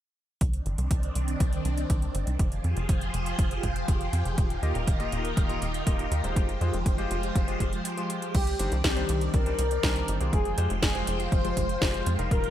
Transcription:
0.41 analog synth bass C2, string machine D#3 C4 D4, kick, closed hi-hat
0.53 closed hi-hat
0.66 analog synth bass G1, closed hi-hat
0.78 analog synth bass C2, closed hi-hat
0.91 analog synth bass C2, kick, closed hi-hat
1.03 closed hi-hat
1.15 analog synth bass C2, closed hi-hat
1.28 closed hi-hat
1.40 analog synth bass C2, kick, closed hi-hat
1.53 closed hi-hat
1.65 analog synth bass C2, closed hi-hat
1.78 closed hi-hat
1.90 analog synth bass C2, kick, closed hi-hat
2.02 closed hi-hat
2.15 analog synth bass G1, closed hi-hat
2.27 analog synth bass C2, closed hi-hat
2.39 analog synth bass F1, string machine F3 F4 G4 G#4 C5, kick, closed hi-hat
2.52 closed hi-hat
2.64 analog synth bass F2, closed hi-hat
2.77 analog synth bass F1, closed hi-hat
2.89 analog synth bass F1, kick, closed hi-hat
3.01 closed hi-hat
3.14 analog synth bass F1, closed hi-hat
3.26 closed hi-hat
3.39 analog synth bass F1, kick, closed hi-hat
3.51 closed hi-hat
3.63 analog synth bass F1, kick, closed hi-hat
3.76 closed hi-hat
3.88 analog synth bass F1, kick, closed hi-hat
4.01 closed hi-hat
4.13 analog synth bass F2, closed hi-hat
4.25 analog synth bass F1, closed hi-hat
4.38 analog synth bass D#1, string machine D#3 D#4 F4 A#4, kick, closed hi-hat
4.50 closed hi-hat
4.63 analog synth bass D#2, electric grand piano A#3 F4 G4 D#5, closed hi-hat
4.75 analog synth bass D#1, closed hi-hat
4.87 analog synth bass D#1, kick, closed hi-hat
5.00 electric grand piano A#3 F4 G4 D#5, closed hi-hat
5.12 analog synth bass D#1, closed hi-hat
5.25 closed hi-hat
5.37 analog synth bass D#1, kick, closed hi-hat
5.49 electric grand piano A#3 F4 G4 D#5, closed hi-hat
5.62 analog synth bass D#1, closed hi-hat
5.74 closed hi-hat
5.87 analog synth bass D#1, electric grand piano A#3 F4 G4 D#5, kick, closed hi-hat
5.99 closed hi-hat
6.11 analog synth bass D#2, closed hi-hat
6.24 analog synth bass D#1, electric grand piano G#3 F4 G4 C5, closed hi-hat
6.36 analog synth bass F1, string machine F3 G#3 F4 C5, kick, closed hi-hat
6.49 closed hi-hat
6.61 analog synth bass F2, electric grand piano G#3 F4 G4 C5, closed hi-hat
6.74 analog synth bass F1, closed hi-hat
6.86 analog synth bass F1, kick, closed hi-hat
6.98 electric grand piano G#3 F4 G4 C5, closed hi-hat
7.11 analog synth bass F1, closed hi-hat
7.23 closed hi-hat
7.35 analog synth bass F1, kick, closed hi-hat
7.48 electric grand piano G#3 F4 G4 C5, closed hi-hat
7.60 analog synth bass F1, kick, closed hi-hat
7.73 closed hi-hat
7.85 closed hi-hat
7.97 electric grand piano G#3 F4 G4 C5, closed hi-hat
8.10 closed hi-hat
8.22 closed hi-hat
8.34 analog synth bass C2, string machine D#3 C4 D5, analog polysynth G4, kick, closed hi-hat, crash
8.47 closed hi-hat
8.59 analog synth bass G1, electric grand piano G3 D4 D#4 C5, closed hi-hat
8.72 analog synth bass C2, closed hi-hat
8.84 analog synth bass C2, analog polysynth G4, kick, snare, closed hi-hat
8.96 electric grand piano G3 D4 D#4 C5, closed hi-hat
9.09 analog synth bass C2, closed hi-hat
9.21 closed hi-hat
9.34 analog synth bass C2, analog polysynth A#4, kick, closed hi-hat
9.46 electric grand piano G3 D4 D#4 C5, closed hi-hat
9.59 analog synth bass C2, closed hi-hat
9.71 closed hi-hat
9.83 analog synth bass C2, electric grand piano G3 D4 D#4 C5, kick, snare, closed hi-hat
9.96 closed hi-hat
10.08 analog synth bass G1, closed hi-hat
10.20 analog synth bass C2, electric grand piano G#3 F4 G4 C5, closed hi-hat
10.33 analog synth bass F1, string machine F3 G#3 F4 C5 G5, analog polysynth G#4, kick, closed hi-hat
10.45 closed hi-hat
10.58 analog synth bass F2, electric grand piano G#3 F4 G4 C5, closed hi-hat
10.70 analog synth bass F1, closed hi-hat
10.83 analog synth bass F1, analog polysynth G#4, kick, snare, closed hi-hat
10.95 electric grand piano G#3 F4 G4 C5, closed hi-hat
11.07 analog synth bass F1, closed hi-hat
11.20 closed hi-hat
11.32 analog synth bass F1, analog polysynth C5, kick, closed hi-hat
11.44 electric grand piano G#3 F4 G4 C5, closed hi-hat
11.57 analog synth bass F1, kick, closed hi-hat
11.69 closed hi-hat
11.81 analog synth bass F1, electric grand piano G#3 F4 G4 C5, kick, snare, closed hi-hat
11.94 closed hi-hat
12.06 analog synth bass F2, closed hi-hat
12.19 analog synth bass F1, electric grand piano G3 D#4 F4 A#4, closed hi-hat
12.31 analog synth bass D#1, string machine D#3 D#4 G4 A#4, analog polysynth A#4, kick, closed hi-hat
12.44 closed hi-hat

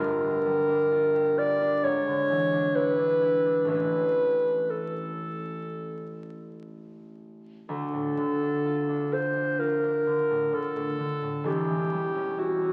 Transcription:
Already playing: harp D4 F4
0.00 harp G1 G2, clarinet A#4
0.22 harp D3
0.46 harp G3
0.68 harp D4
0.92 harp F4
1.15 harp G4
1.38 harp F4, clarinet D5
1.62 harp D4
1.84 harp G#2, clarinet C#5
2.07 harp D3
2.30 harp E3
2.53 harp D4
2.75 harp E4, clarinet B4
2.99 harp D4
3.22 harp E4
3.45 harp D4
3.64 harp A1 A2 E3 C#4
3.69 harp E4, clarinet B4
4.70 clarinet A4
7.69 harp D2, clarinet A4
7.93 harp A2
8.17 harp D3
8.42 harp D4
8.66 harp F4
8.89 harp D4
9.13 harp F4, clarinet C5
9.36 harp D4
9.59 harp F4, clarinet A#4
9.84 harp D4
10.07 harp D3
10.30 harp A2
10.52 harp D3, clarinet A4
10.76 harp A2
10.99 harp D3
11.22 harp A2
11.44 harp E1 E2, clarinet G4
11.69 harp E3
11.92 harp G3
12.15 harp C#4
12.38 harp E4, clarinet F#4
12.62 harp C#4

